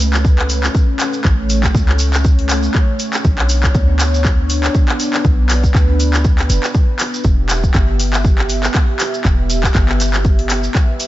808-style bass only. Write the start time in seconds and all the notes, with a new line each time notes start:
Already playing: C#2
1.25 A1
1.75 C#2
3.25 B1
3.75 D2
5.25 B1
5.75 D2
6.50 F#1
7.25 E1
7.74 G1
9.25 E1
9.75 G1